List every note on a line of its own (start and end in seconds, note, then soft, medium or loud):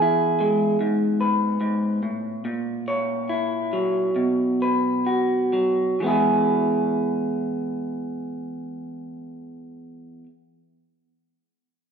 0.00 0.76 E3 medium
0.00 2.44 B3 soft
0.00 0.76 E4 soft
0.00 1.20 G#4 soft
0.41 0.75 G#3 soft
0.81 1.59 G#2 medium
1.21 2.38 B4 soft
1.61 2.02 G#2 soft
2.03 2.44 A2 soft
2.45 4.10 A#2 medium
2.88 4.11 C#5 soft
3.29 4.10 E4 soft
3.73 5.52 F#3 soft
4.16 5.94 B2 soft
4.62 5.95 B4 soft
5.06 5.94 F#4 soft
5.53 6.00 F#3 soft
6.00 10.23 E3 soft
6.00 10.25 G#3 soft
6.00 10.27 B3 soft
6.06 10.30 E4 soft
6.06 10.31 G#4 soft